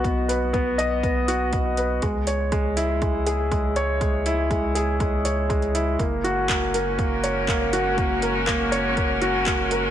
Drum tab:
HH |x-x-x-x-x-x-x-x-|x-x-x-x-x-x-x-x-|x-x-x-x-x-x-xxx-|x-x-x-x-x-x-x-x-|
CP |----------------|----------------|----------------|----x-------x---|
BD |o---o---o---o---|o---o---o---o---|o---o---o---o---|o---o---o---o---|

HH |x-x-x-x-x-x-x-x-|
CP |----x-------x---|
BD |o---o---o---o---|